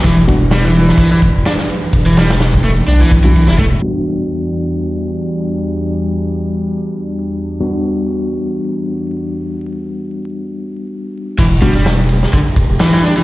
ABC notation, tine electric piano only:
X:1
M:4/4
L:1/16
Q:"Swing 16ths" 1/4=127
K:Em
V:1 name="Tine electric piano"
z2 [G,B,DF] z12 z | z8 z3 [G,B,DF] z4 | [G,B,DF]16- | [G,B,DF]16 |
[G,B,DF]16- | [G,B,DF]16 | z2 [G,B,DF] z12 z |]